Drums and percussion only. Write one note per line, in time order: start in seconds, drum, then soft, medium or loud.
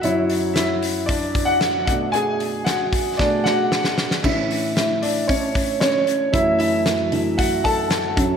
0.03 hi-hat pedal medium
0.03 open hi-hat loud
0.29 hi-hat pedal medium
0.29 open hi-hat medium
0.56 snare loud
0.56 hi-hat pedal medium
0.56 open hi-hat loud
0.82 hi-hat pedal medium
0.82 open hi-hat medium
1.09 kick loud
1.09 hi-hat pedal medium
1.09 open hi-hat medium
1.35 kick medium
1.35 hi-hat pedal medium
1.35 open hi-hat medium
1.61 snare loud
1.61 hi-hat pedal medium
1.61 open hi-hat medium
1.87 kick loud
1.87 hi-hat pedal medium
1.87 open hi-hat medium
2.14 hi-hat pedal medium
2.14 open hi-hat medium
2.40 hi-hat pedal medium
2.40 open hi-hat medium
2.66 snare loud
2.66 hi-hat pedal medium
2.66 open hi-hat loud
2.93 kick medium
2.93 hi-hat pedal medium
2.93 open hi-hat medium
3.19 kick medium
3.19 snare medium
3.46 snare medium
3.72 snare medium
3.84 snare medium
3.98 snare loud
4.11 snare medium
4.24 kick loud
4.24 crash medium
4.51 hi-hat pedal medium
4.51 open hi-hat medium
4.77 snare loud
4.77 hi-hat pedal medium
4.77 open hi-hat medium
5.03 hi-hat pedal medium
5.03 open hi-hat medium
5.29 kick loud
5.29 hi-hat pedal medium
5.29 open hi-hat medium
5.55 kick medium
5.55 hi-hat pedal medium
5.55 open hi-hat medium
5.81 snare loud
5.81 hi-hat pedal medium
5.81 open hi-hat medium
6.07 hi-hat pedal medium
6.07 open hi-hat medium
6.34 kick medium
6.34 hi-hat pedal medium
6.34 open hi-hat medium
6.60 hi-hat pedal medium
6.60 open hi-hat medium
6.86 snare loud
6.86 hi-hat pedal medium
6.86 open hi-hat loud
7.12 hi-hat pedal medium
7.12 open hi-hat medium
7.38 kick loud
7.38 hi-hat pedal medium
7.38 open hi-hat medium
7.65 kick medium
7.65 hi-hat pedal medium
7.65 open hi-hat medium
7.90 snare loud
7.90 hi-hat pedal medium
7.90 open hi-hat loud
8.17 kick loud
8.17 hi-hat pedal medium
8.17 open hi-hat medium